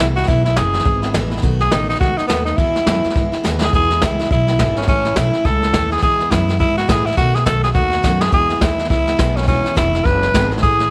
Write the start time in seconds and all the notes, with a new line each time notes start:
0.00 C2 E2 B2 E3 G#3 B3 E4
0.16 E3 G#3 B3 E4 F#4, snare
0.23 E2, snare
0.27 B1 B2 E3 G#3 B3 E4, kick, snare
0.44 E3 G#3 B3 E4, snare
0.56 F#1 E2 B2 E3 G#3 B3 E4 G#4, snare, hi-hat pedal
0.73 E3 G#3 B3 E4, snare
0.79 snare
0.85 G#1 E3 G#3 B3 E4, kick, snare
1.02 E3 G#3 B3 E4, snare
1.14 A1 E2 B2 E3 G#3 B3 E4, snare, hi-hat pedal
1.30 E3 G#3 B3 E4, snare
1.37 snare
1.42 B1 B2 D#3 A3 B3 F#4, kick, snare
1.59 A3 B3 F#4 G#4, snare
1.71 A1 B2 D#3 A3 B3 D#4 F#4, snare, hi-hat pedal
1.88 A3 B3 D#4 F#4, snare
1.95 snare
2.00 C#2 D#3 A3 B3 F#4, kick, snare
2.17 A3 B3 D#4 F#4, muted upright bass stroke, snare
2.28 D#2 B2 D#3 A3 B3 F#4, snare, hi-hat pedal
2.45 A3 B3 D#4 F#4, snare
2.57 E2 B2 E3 G#3 B3 E4, kick, snare
2.75 E3 G#3 B3 E4, snare
2.87 E2 F#2 B2 E3 G#3 B3 E4, snare, hi-hat pedal
3.03 E3 G#3 B3 E4, muted upright bass stroke, snare
3.10 snare
3.15 G#2 E3 G#3 B3 E4, kick, snare
3.32 E3 G#3 B3 E4, muted upright bass stroke, snare
3.44 D#2 E2 B2 E3 G#3 B3 E4, snare, hi-hat pedal
3.61 E3 G#3 B3 E4 G#4, snare
3.73 E2 B2 E3 G#3 B3 E4 G#4, kick, snare
3.90 E3 G#3 B3 E4, snare
4.01 C#2 E2 B2 E3 G#3 B3 E4, kick, snare, hi-hat pedal
4.19 E3 G#3 B3 E4, snare
4.25 snare
4.31 B1 E3 G#3 B3 E4, kick, snare
4.47 E3 G#3 B3 E4, snare
4.59 G#1 E2 B2 E3 G#3 B3 E4, kick, snare, hi-hat pedal
4.76 E3 G#3 B3 C#4 E4, snare
4.82 snare
4.87 A1 A2 E3 A3 C#4 E4, kick, snare
5.05 A3 C#4 E4, snare
5.16 B1 A2 E3 A3 C#4 E4, kick, snare, hi-hat pedal
5.33 A3 C#4 E4, snare
5.44 C#2 E3 A3 C#4 E4 A4, kick, snare
5.62 A3 C#4 E4, snare
5.73 D#2 A2 E3 A3 C#4 E4, kick, snare, hi-hat pedal
5.90 A3 C#4 E4 G#4, snare
5.97 E2, snare
6.02 E2 B2 E3 G#3 B3 E4 G#4, kick, snare
6.19 E3 G#3 B3 E4, snare
6.31 E2 F#2 B2 E3 G#3 B3 E4, kick, snare, hi-hat pedal
6.47 E3 G#3 B3 E4, snare
6.59 G#2 E3 G#3 B3 E4, kick, snare
6.76 E3 G#3 B3 E4 F#4, snare
6.88 E2 A2 B2 E3 G#3 B3 E4 G#4, kick, snare, hi-hat pedal
7.06 E3 G#3 B3 E4, snare
7.12 snare
7.17 B2 D#3 A3 B3 F#4, kick, snare
7.34 A3 B3 F#4 G#4, snare
7.46 B1 B2 D#3 A3 B3 F#4 A4, kick, snare, hi-hat pedal
7.63 A3 B3 F#4 G#4, snare
7.74 D#2 D#3 A3 B3 F#4, kick, snare
7.90 A3 B3 F#4, snare
8.03 F#2 B2 D#3 A3 B3 F#4, kick, snare, hi-hat pedal
8.21 A3 B3 F#4 G#4, snare
8.32 E2 B2 E3 G#3 B3 E4 G#4, kick
8.49 E3 G#3 B3 E4, snare
8.61 D#2 E2 B2 E3 G#3 B3 E4, kick, snare, hi-hat pedal
8.78 E3 G#3 B3 E4, snare
8.85 snare
8.90 C#2 E3 G#3 B3 E4, kick, snare
9.07 E3 G#3 B3 E4, snare
9.18 B1 E2 B2 E3 G#3 B3 E4, kick, snare, hi-hat pedal
9.36 E3 G#3 B3 C#4 E4, snare
9.43 snare
9.47 E1 E2 B2 E3 G#3 B3 C#4 E4, kick, snare
9.63 E3 G#3 B3 E4, muted upright bass stroke, snare
9.75 F1 E2 B2 E3 G#3 B3 E4, kick, snare, hi-hat pedal
9.93 E3 G#3 B3 E4, snare
10.04 F#1 E3 G#3 B3 E4 B4, kick, snare
10.22 E3 G#3 B3 E4, snare
10.34 G#1 E2 B2 E3 G#3 B3 E4, kick, snare, hi-hat pedal
10.51 E3 G#3 B3 E4, snare
10.57 snare
10.63 A1 A2 E3 A3 C#4 E4 G#4, kick, snare
10.79 A3 C#4 E4, snare